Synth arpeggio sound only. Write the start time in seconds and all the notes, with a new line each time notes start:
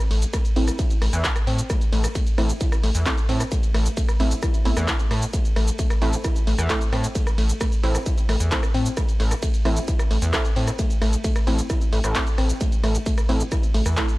0.11 A3
0.34 A3
0.56 C4
0.79 E4
1.02 A3
1.24 A4
1.47 C4
1.70 A3
1.93 A3
2.15 A3
2.38 C4
2.61 E4
2.83 A3
3.06 A4
3.29 C4
3.52 A3
3.74 A3
3.97 A3
4.20 C4
4.43 E4
4.65 B3
4.77 A3
4.88 E4
5.11 A3
5.34 A3
5.56 A3
5.79 A3
6.02 C4
6.24 E4
6.47 A3
6.70 A4
6.93 C4
7.15 A3
7.38 A3
7.61 A3
7.84 C4
8.06 E4
8.29 A3
8.52 A4
8.74 C4
8.97 A3
9.20 A3
9.43 A3
9.65 C4
9.88 E4
10.11 A3
10.33 A4
10.56 C4
10.79 A3
11.02 A3
11.24 A3
11.47 C4
11.70 E4
11.93 A3
12.15 A4
12.38 C4
12.61 A3
12.83 A3
13.06 A3
13.29 C4
13.52 E4
13.74 A3
13.97 A4